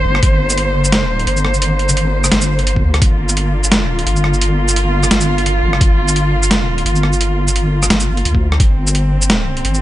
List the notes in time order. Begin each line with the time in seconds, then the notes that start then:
Already playing: D3 A#3 C5
0.05 G1
0.15 cross-stick
0.23 G1, kick, closed hi-hat
0.50 shaker
0.58 closed hi-hat
0.85 shaker
0.92 snare, closed hi-hat
1.19 closed hi-hat
1.27 G1, closed hi-hat
1.37 shaker
1.45 cross-stick
1.54 shaker
1.62 closed hi-hat
1.79 closed hi-hat
1.89 shaker
1.97 closed hi-hat
2.24 cross-stick, shaker
2.32 G1, snare, closed hi-hat
2.41 shaker
2.59 closed hi-hat
2.67 closed hi-hat
2.76 kick
2.84 D2
2.94 cross-stick, closed hi-hat
3.02 G1 F4, kick, closed hi-hat
3.29 shaker
3.37 closed hi-hat
3.64 shaker
3.72 snare, closed hi-hat
3.99 closed hi-hat
4.07 G1, closed hi-hat
4.16 shaker
4.24 cross-stick
4.34 shaker
4.41 closed hi-hat
4.68 shaker
4.76 closed hi-hat
5.03 cross-stick, shaker
5.11 G1, snare, closed hi-hat
5.21 shaker
5.38 closed hi-hat
5.46 closed hi-hat
5.64 G1
5.73 cross-stick
5.81 G1, kick, closed hi-hat
6.08 shaker
6.16 closed hi-hat
6.43 shaker
6.51 snare, closed hi-hat
6.78 closed hi-hat
6.86 G1, closed hi-hat
6.96 shaker
7.03 cross-stick
7.13 shaker
7.21 closed hi-hat
7.48 shaker
7.56 closed hi-hat
7.83 cross-stick, shaker
7.90 G1, snare, closed hi-hat
8.00 shaker
8.17 closed hi-hat
8.25 D2, closed hi-hat
8.35 kick
8.52 cross-stick
8.60 G1 C4, kick, closed hi-hat
8.87 shaker
8.95 closed hi-hat
9.22 shaker
9.30 snare, closed hi-hat
9.57 closed hi-hat
9.65 G1, closed hi-hat
9.74 shaker